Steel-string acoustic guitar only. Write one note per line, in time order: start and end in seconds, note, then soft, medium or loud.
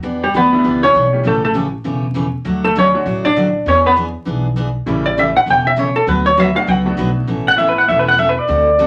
0.03 0.23 E3 medium
0.03 0.24 B3 medium
0.03 0.24 D4 medium
0.03 0.24 G4 medium
0.34 0.45 E3 medium
0.34 0.45 B3 medium
0.34 0.45 D4 medium
0.34 0.46 G4 medium
0.64 0.84 E3 medium
0.64 0.84 B3 medium
0.64 0.85 D4 medium
0.64 0.85 G4 medium
0.94 1.05 E3 medium
0.94 1.06 B3 medium
0.94 1.06 D4 medium
0.94 1.06 G4 medium
1.23 1.44 C#3 medium
1.23 1.45 E3 medium
1.23 1.45 A3 medium
1.23 1.45 C#4 medium
1.23 1.45 G4 medium
1.54 1.65 C#3 medium
1.54 1.66 E3 medium
1.54 1.66 A3 medium
1.54 1.66 C#4 medium
1.54 1.66 G4 medium
1.84 2.05 C#3 medium
1.84 2.05 E3 medium
1.84 2.05 A3 medium
1.84 2.05 C#4 medium
1.84 2.05 G4 medium
2.14 2.26 C#3 medium
2.14 2.26 E3 medium
2.14 2.26 A3 medium
2.14 2.27 C#4 medium
2.14 2.27 G4 medium
2.45 2.65 D3 medium
2.45 2.65 F#3 medium
2.45 2.65 A3 medium
2.45 2.65 D4 medium
2.45 2.66 F#4 medium
2.75 2.87 D3 medium
2.75 2.87 F#3 medium
2.75 2.87 A3 medium
2.75 2.87 D4 medium
2.75 2.87 F#4 medium
3.05 3.26 D3 medium
3.05 3.26 F#3 medium
3.05 3.26 A3 medium
3.05 3.26 D4 medium
3.05 3.26 F#4 medium
3.36 3.47 D3 medium
3.36 3.47 F#3 medium
3.36 3.47 A3 medium
3.36 3.48 D4 medium
3.36 3.48 F#4 medium
3.66 3.86 E3 medium
3.66 3.86 B3 medium
3.66 3.87 D4 medium
3.66 3.87 G#4 medium
3.96 4.07 E3 medium
3.96 4.08 B3 medium
3.96 4.08 D4 medium
3.96 4.08 G#4 medium
4.25 4.46 E3 medium
4.25 4.46 B3 medium
4.25 4.47 D4 medium
4.25 4.47 G#4 medium
4.56 4.67 E3 medium
4.56 4.68 B3 medium
4.56 4.68 D4 medium
4.56 4.68 G#4 medium
4.87 5.07 C#3 medium
4.87 5.07 E3 medium
4.87 5.07 A3 medium
4.87 5.07 C#4 medium
4.87 5.07 G4 medium
5.17 5.28 C#3 medium
5.17 5.28 E3 medium
5.17 5.28 A3 medium
5.17 5.29 C#4 medium
5.17 5.29 G4 medium
5.46 5.67 C#3 medium
5.46 5.67 E3 medium
5.46 5.67 A3 medium
5.46 5.67 C#4 medium
5.46 5.67 G4 medium
5.76 5.88 C#3 medium
5.76 5.88 E3 medium
5.76 5.88 A3 medium
5.76 5.88 C#4 medium
5.76 5.88 G4 medium
6.07 6.27 D3 medium
6.07 6.27 F#3 medium
6.07 6.27 B3 medium
6.07 6.28 F#4 medium
6.07 6.28 B4 medium
6.37 6.48 D3 medium
6.37 6.48 F#3 medium
6.37 6.48 B3 medium
6.37 6.49 F#4 medium
6.37 6.49 B4 medium
6.67 6.87 D3 medium
6.67 6.87 F#3 medium
6.67 6.88 B3 medium
6.67 6.88 F#4 medium
6.67 6.88 B4 medium
6.97 7.08 D3 medium
6.97 7.09 F#3 medium
6.97 7.09 B3 medium
6.97 7.09 F#4 medium
6.97 7.09 B4 medium
7.27 7.48 B2 medium
7.27 7.48 E3 medium
7.27 7.48 A3 medium
7.27 7.48 C#4 medium
7.27 7.48 A4 medium
7.59 7.69 B2 medium
7.59 7.69 E3 medium
7.59 7.69 A3 medium
7.59 7.70 C#4 medium
7.59 7.70 A4 medium
7.89 8.09 B2 medium
7.89 8.09 E3 medium
7.89 8.09 A3 medium
7.89 8.09 C#4 medium
7.89 8.09 A4 medium
8.17 8.29 B2 medium
8.17 8.29 E3 medium
8.17 8.29 A3 medium
8.17 8.30 C#4 medium
8.17 8.30 A4 medium
8.48 8.68 D3 medium
8.48 8.69 A3 medium
8.48 8.69 C4 medium
8.48 8.69 F#4 medium
8.48 8.69 A4 medium
8.79 8.87 D3 medium
8.79 8.87 A3 medium
8.79 8.87 C4 medium
8.79 8.87 F#4 medium
8.79 8.87 A4 medium